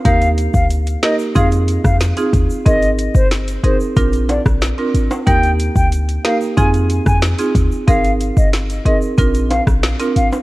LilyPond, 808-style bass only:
\new Staff \with { instrumentName = "808-style bass" } { \clef bass \time 4/4 \key f \dorian \tempo 4 = 92 ees,8. d,8. r8 f,8. f,8 r16 ees,16 r16 | aes,,8. g,,8. r8 bes,,8. bes,,8 r16 aes,,16 r16 | ees,8. d,8. r8 f,8. f,8 r16 ees,16 r16 | aes,,8. g,,8. r8 bes,,8. bes,,8 r16 aes,,16 r16 | }